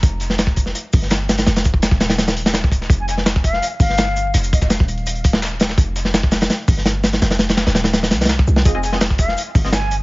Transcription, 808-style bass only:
X:1
M:4/4
L:1/16
Q:1/4=167
K:Fm
V:1 name="808-style bass" clef=bass
F,,,8 z2 G,,,6 | F,,,4- F,,, E,,,8- E,,,3 | F,,,8 z2 G,,,6 | F,,,4- F,,, E,,,8- E,,,3 |
F,,,8 z2 G,,,6 | F,,,4- F,,, E,,,4- E,,, C,,4 C,,2 | F,,,8 z2 G,,,6 |]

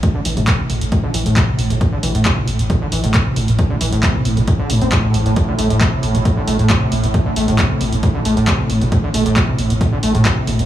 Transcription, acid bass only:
X:1
M:4/4
L:1/16
Q:1/4=135
K:Am
V:1 name="Acid bass" clef=bass
A,, D, E, A,, C,2 A,, C, A,, D, E, A,, C,2 A,, C, | A,, D, E, A,, C,2 A,, C, A,, D, E, A,, C,2 A,, C, | A,, D, E, A,, C,2 A,, C, A,, D, A,, C A,,2 ^G,, A,, | A,, D, A, A,, C,2 A,, C, A,, D, A, A,, C,2 A,, C, |
A,, D, A, A,, C,2 A,, C, A,, D, A, A,, C,2 A,, C, | A,, D, A, A,, C,2 A,, C, A,, D, A, A,, C,2 A,, C, |]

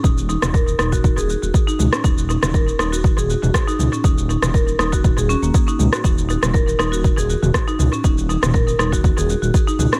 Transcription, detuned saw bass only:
X:1
M:4/4
L:1/16
Q:"Swing 16ths" 1/4=120
K:Ebm
V:1 name="Detuned saw bass" clef=bass
E,,,3 E,,,3 E,,,3 E,,, z E,,, z2 D,, z | E,,,3 E,,,3 E,,,3 E,,, z E,,, z2 D,, z | E,,,3 E,,,3 E,,,3 E,,, z E,,, z2 D,, z | E,,,3 E,,,3 E,,,3 E,,, z E,,, z2 D,, z |
E,,,3 E,,,3 E,,,3 E,,, z E,,, z2 D,, z |]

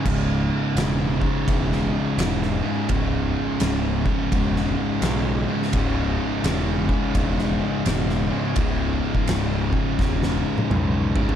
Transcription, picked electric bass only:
X:1
M:4/4
L:1/8
Q:"Swing" 1/4=84
K:C#m
V:1 name="Picked electric bass" clef=bass
C,,,2 E,,,2 E,,,2 E,,,2 | C,,,2 C,,,2 E,,,2 B,,,2 | C,,,2 E,,,2 E,,,2 E,,,2 | C,,,2 C,,,2 E,,,2 B,,,2 |]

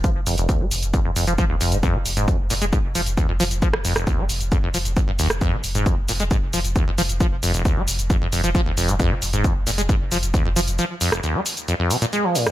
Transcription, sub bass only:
X:1
M:4/4
L:1/16
Q:1/4=134
K:Fm
V:1 name="Sub bass" clef=bass
z F,,, F,,, F,,, z F,,, F,,, F,,, z F,,, F,,, F,,, z F,,, F,,, F,,, | z F,,, F,,, F,,, z F,,, F,,, F,,, z F,,, F,,, F,,, z F,,, F,,, F,,, | z F,,, F,,, F,,, z F,,, F,,, F,,, z F,,, F,,, F,,, z F,,, F,,, F,,, | z F,,, F,,, F,,, z F,,, F,,, F,,, z F,,, F,,, F,,, z F,,, F,,, F,,, |
z F,,, F,,, F,,, z F,,, F,,, F,,, z F,,, F,,, F,,, z F,,, F,,, F,,, | z F,,, F,,, F,,, z F,,, F,,, F,,, z F,,, F,,, F,,, z F,,, F,,, F,,, | z16 |]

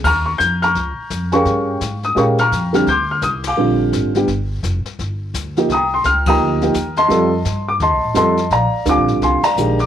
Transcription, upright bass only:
X:1
M:4/4
L:1/8
Q:"Swing" 1/4=170
K:Bbmix
V:1 name="Upright bass" clef=bass
E,,2 F,,2 _D,, z F,,2 | G,,2 A,,2 B,,2 F,,2 | D,,2 C,,2 B,,,2 A,,,2 | G,,,2 F,,, z G,,,2 D,,2 |
C,,2 _D,,2 =D,,2 E,,2 | F,,2 G,,2 (3E,, C,, =A,,, F,,2 | B,,, z (3D,, B,,, A,,, C,, z B,,,2 |]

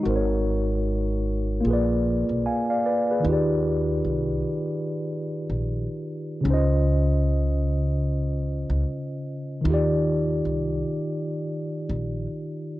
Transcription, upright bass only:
X:1
M:4/4
L:1/16
Q:"Swing 16ths" 1/4=75
K:Bbdor
V:1 name="Upright bass" clef=bass
A,,,8 B,,,3 _C,, z4 | [K:Eb] E,,4 C,,2 z4 z B,,,2 z3 | _D,,8- D,,3 D,, z4 | E,,4 C,,2 z4 z B,,,2 z3 |]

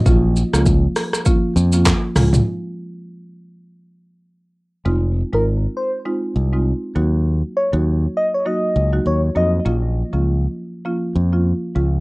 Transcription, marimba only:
X:1
M:4/4
L:1/16
Q:"Swing 16ths" 1/4=100
K:Bbm
V:1 name="Marimba"
[F,B,DF]3 [F,B,DF] z4 [F,B,DF] z2 [F,B,DF] z2 [F,A,DF] z | z16 | [A,CEF]3 [A,CEF] z4 [A,CEF] z2 [A,CEF] z2 [G,B,EG] z | z3 [G,B,EG] z4 [G,B,EG] z2 [G,B,EG]3 [G,B,EG]2 |
[F,B,DF]3 [F,B,DF] z4 [F,B,DF] z2 [F,B,DF] z2 [F,A,DF] z |]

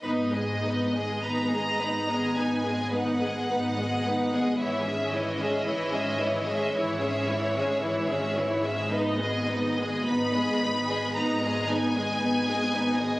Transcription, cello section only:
X:1
M:4/4
L:1/8
Q:1/4=55
K:G#m
V:1 name="Cello section" clef=bass
G,,2 G,,2 G,,2 G,,2 | G,,2 G,,2 G,,2 G,,2 | G,,2 G,,2 G,,2 G,,2 |]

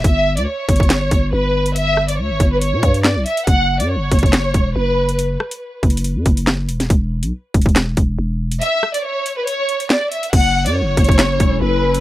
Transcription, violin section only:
X:1
M:4/4
L:1/16
Q:1/4=140
K:F#phr
V:1 name="Violin section"
e3 d c8 B4 | e3 d c3 B c4 d2 e2 | f3 d c8 B4 | z16 |
z16 | e3 d c3 B c4 d2 e2 | f3 d c8 B4 |]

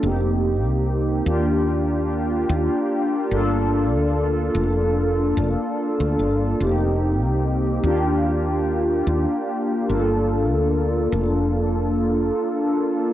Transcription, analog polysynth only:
X:1
M:4/4
L:1/8
Q:"Swing 16ths" 1/4=73
K:Gm
V:1 name="Analog polysynth"
[B,CEG]3 [B,DFG]4- [B,DFG] | [B,DFA]8 | [B,CEG]3 [B,DFG]4- [B,DFG] | [B,DFA]8 |]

